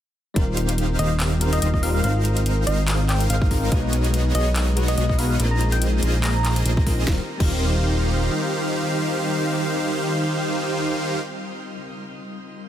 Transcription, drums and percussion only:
0.36 kick loud
0.36 closed hi-hat medium
0.57 closed hi-hat medium
0.69 closed hi-hat medium
0.78 closed hi-hat medium
0.99 closed hi-hat medium
1.20 clap loud
1.20 closed hi-hat medium
1.41 closed hi-hat medium
1.53 closed hi-hat medium
1.62 closed hi-hat medium
1.74 kick medium
1.83 open hi-hat medium
2.04 closed hi-hat medium
2.25 closed hi-hat medium
2.37 closed hi-hat medium
2.46 closed hi-hat medium
2.67 closed hi-hat medium
2.88 clap loud
2.88 closed hi-hat medium
3.09 clap medium
3.09 closed hi-hat medium
3.21 closed hi-hat medium
3.30 closed hi-hat medium
3.42 kick loud
3.51 kick medium
3.51 open hi-hat medium
3.72 kick loud
3.72 closed hi-hat medium
3.93 closed hi-hat medium
4.04 closed hi-hat medium
4.14 closed hi-hat medium
4.35 closed hi-hat medium
4.56 clap loud
4.56 closed hi-hat medium
4.77 closed hi-hat medium
4.88 closed hi-hat medium
4.98 closed hi-hat medium
5.09 kick medium
5.19 open hi-hat medium
5.40 closed hi-hat medium
5.61 closed hi-hat medium
5.72 closed hi-hat medium
5.82 closed hi-hat medium
6.03 closed hi-hat medium
6.24 clap loud
6.24 closed hi-hat medium
6.45 clap medium
6.45 closed hi-hat medium
6.56 closed hi-hat medium
6.66 closed hi-hat medium
6.77 kick loud
6.87 kick medium
6.87 open hi-hat medium
7.08 kick loud
7.08 snare medium
7.40 kick loud
7.40 crash medium

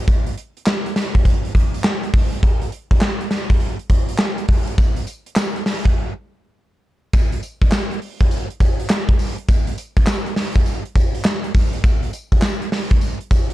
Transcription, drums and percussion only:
0.08 kick loud
0.08 closed hi-hat medium
0.26 closed hi-hat medium
0.37 closed hi-hat medium
0.57 closed hi-hat soft
0.67 snare loud
0.67 clap medium
0.86 closed hi-hat soft
0.96 snare medium
0.96 closed hi-hat medium
1.15 kick medium
1.15 closed hi-hat medium
1.25 kick medium
1.25 closed hi-hat medium
1.45 closed hi-hat soft
1.55 kick medium
1.55 closed hi-hat medium
1.74 closed hi-hat medium
1.84 snare loud
1.84 clap medium
2.03 closed hi-hat soft
2.14 kick loud
2.14 open hi-hat medium
2.33 closed hi-hat medium
2.43 kick loud
2.43 closed hi-hat medium
2.62 closed hi-hat medium
2.72 closed hi-hat medium
2.91 kick medium
2.91 closed hi-hat soft
3.01 snare loud
3.01 clap loud
3.21 closed hi-hat soft
3.31 snare medium
3.31 closed hi-hat medium
3.50 kick loud
3.50 closed hi-hat medium
3.60 closed hi-hat medium
3.79 closed hi-hat soft
3.90 kick medium
3.90 closed hi-hat medium
4.09 closed hi-hat medium
4.18 snare loud
4.18 clap loud
4.38 closed hi-hat soft
4.48 kick loud
4.48 open hi-hat medium
4.67 closed hi-hat medium
4.78 kick loud
4.78 closed hi-hat medium
4.78 tambourine medium
4.96 closed hi-hat medium
5.07 closed hi-hat medium
5.07 tambourine medium
5.26 closed hi-hat soft
5.36 snare loud
5.36 clap loud
5.36 tambourine loud
5.56 closed hi-hat soft
5.66 snare medium
5.66 open hi-hat medium
5.85 kick medium
5.85 closed hi-hat medium
7.13 kick loud
7.13 closed hi-hat medium
7.13 tambourine medium
7.32 closed hi-hat medium
7.43 closed hi-hat medium
7.43 tambourine medium
7.62 kick loud
7.62 closed hi-hat soft
7.72 snare loud
7.72 clap medium
7.72 tambourine loud
7.91 closed hi-hat soft
8.02 open hi-hat medium
8.21 kick medium
8.21 closed hi-hat medium
8.31 closed hi-hat medium
8.31 tambourine medium
8.50 closed hi-hat soft
8.60 kick medium
8.60 closed hi-hat medium
8.60 tambourine medium
8.80 closed hi-hat medium
8.90 snare loud
8.90 clap loud
8.90 tambourine loud
9.09 kick loud
9.09 closed hi-hat soft
9.19 open hi-hat medium
9.19 tambourine medium
9.38 closed hi-hat medium
9.48 kick loud
9.48 closed hi-hat medium
9.48 tambourine medium
9.67 closed hi-hat medium
9.78 closed hi-hat medium
9.78 tambourine medium
9.97 kick loud
9.97 closed hi-hat soft
10.07 snare loud
10.07 clap loud
10.07 tambourine loud
10.26 closed hi-hat soft
10.36 snare medium
10.36 open hi-hat medium
10.56 kick medium
10.56 closed hi-hat medium
10.66 closed hi-hat medium
10.66 tambourine medium
10.85 closed hi-hat soft
10.96 kick medium
10.96 closed hi-hat medium
10.96 tambourine medium
11.15 closed hi-hat medium
11.25 snare loud
11.25 clap medium
11.25 tambourine loud
11.44 closed hi-hat soft
11.54 kick loud
11.54 open hi-hat medium
11.54 tambourine medium
11.73 closed hi-hat medium
11.84 kick loud
11.84 closed hi-hat medium
11.84 tambourine medium
12.03 closed hi-hat medium
12.13 closed hi-hat medium
12.13 tambourine medium
12.32 kick loud
12.32 closed hi-hat soft
12.42 snare loud
12.42 clap loud
12.42 tambourine loud
12.62 closed hi-hat soft
12.72 snare medium
12.72 open hi-hat medium
12.91 kick medium
12.91 closed hi-hat medium
13.01 closed hi-hat medium
13.01 tambourine medium
13.21 closed hi-hat soft
13.31 kick medium
13.31 closed hi-hat medium
13.31 tambourine medium
13.50 closed hi-hat medium

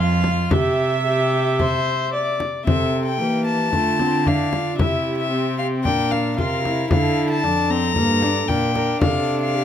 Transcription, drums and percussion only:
0.24 frame drum soft
0.51 frame drum medium
1.59 frame drum soft
2.40 frame drum soft
2.67 frame drum medium
3.73 frame drum soft
3.99 frame drum soft
4.26 frame drum soft
4.53 frame drum soft
4.79 frame drum medium
5.85 frame drum soft
6.12 frame drum soft
6.38 frame drum soft
6.65 frame drum soft
6.91 frame drum medium
7.96 frame drum soft
8.22 frame drum soft
8.49 frame drum soft
8.76 frame drum soft
9.01 frame drum medium

